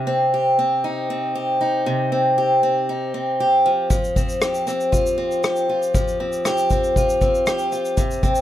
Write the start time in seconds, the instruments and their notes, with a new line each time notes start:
Already playing: steel-string acoustic guitar C3 G4
0.07 steel-string acoustic guitar C4
0.34 steel-string acoustic guitar G4
0.59 steel-string acoustic guitar C4
0.84 steel-string acoustic guitar D#4
1.10 steel-string acoustic guitar C4
1.35 steel-string acoustic guitar G4
1.61 steel-string acoustic guitar D#4
1.86 steel-string acoustic guitar C3
2.12 steel-string acoustic guitar C4
2.38 steel-string acoustic guitar G4
2.63 steel-string acoustic guitar C4
2.89 steel-string acoustic guitar D#4
3.14 steel-string acoustic guitar C4
3.40 steel-string acoustic guitar G4
3.66 steel-string acoustic guitar F3
3.90 steel-string acoustic guitar F3, kick, shaker
4.04 shaker
4.16 steel-string acoustic guitar C4, kick, shaker
4.29 shaker
4.42 steel-string acoustic guitar G4, cross-stick, shaker
4.54 shaker
4.67 steel-string acoustic guitar C4, cross-stick, shaker
4.80 shaker
4.92 steel-string acoustic guitar F4, kick, shaker
5.06 shaker
5.18 steel-string acoustic guitar C4
5.31 shaker
5.44 steel-string acoustic guitar G4, cross-stick, shaker
5.56 shaker
5.69 steel-string acoustic guitar F4
5.83 shaker
5.95 steel-string acoustic guitar F3, kick, shaker
6.08 shaker
6.20 steel-string acoustic guitar C4
6.33 shaker
6.45 steel-string acoustic guitar G4, cross-stick, shaker
6.58 shaker
6.70 steel-string acoustic guitar C4, kick, shaker
6.84 shaker
6.96 steel-string acoustic guitar F4, kick, shaker
7.09 shaker
7.21 steel-string acoustic guitar C4, kick, shaker
7.35 shaker
7.46 steel-string acoustic guitar G4, cross-stick, shaker
7.59 shaker
7.72 steel-string acoustic guitar F4, shaker
7.85 shaker
7.97 steel-string acoustic guitar C3, kick, shaker
8.11 shaker
8.23 steel-string acoustic guitar C4, kick, shaker
8.35 shaker